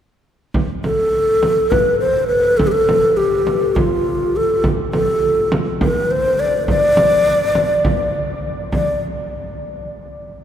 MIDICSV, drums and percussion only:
0, 0, Header, 1, 2, 480
1, 0, Start_track
1, 0, Tempo, 584226
1, 454, Time_signature, 7, 3, 24, 8
1, 8579, End_track
2, 0, Start_track
2, 0, Title_t, "Frame drum"
2, 446, Note_on_c, 9, 64, 68
2, 529, Note_off_c, 9, 64, 0
2, 691, Note_on_c, 9, 64, 55
2, 773, Note_off_c, 9, 64, 0
2, 1172, Note_on_c, 9, 64, 59
2, 1254, Note_off_c, 9, 64, 0
2, 1410, Note_on_c, 9, 64, 72
2, 1492, Note_off_c, 9, 64, 0
2, 2131, Note_on_c, 9, 64, 73
2, 2213, Note_off_c, 9, 64, 0
2, 2372, Note_on_c, 9, 64, 59
2, 2454, Note_off_c, 9, 64, 0
2, 2849, Note_on_c, 9, 64, 54
2, 2931, Note_off_c, 9, 64, 0
2, 3090, Note_on_c, 9, 64, 81
2, 3172, Note_off_c, 9, 64, 0
2, 3810, Note_on_c, 9, 64, 72
2, 3892, Note_off_c, 9, 64, 0
2, 4054, Note_on_c, 9, 64, 57
2, 4136, Note_off_c, 9, 64, 0
2, 4534, Note_on_c, 9, 64, 68
2, 4616, Note_off_c, 9, 64, 0
2, 4773, Note_on_c, 9, 64, 73
2, 4856, Note_off_c, 9, 64, 0
2, 5489, Note_on_c, 9, 64, 66
2, 5571, Note_off_c, 9, 64, 0
2, 5727, Note_on_c, 9, 64, 64
2, 5809, Note_off_c, 9, 64, 0
2, 6205, Note_on_c, 9, 64, 63
2, 6287, Note_off_c, 9, 64, 0
2, 6446, Note_on_c, 9, 64, 71
2, 6528, Note_off_c, 9, 64, 0
2, 7168, Note_on_c, 9, 64, 68
2, 7250, Note_off_c, 9, 64, 0
2, 8579, End_track
0, 0, End_of_file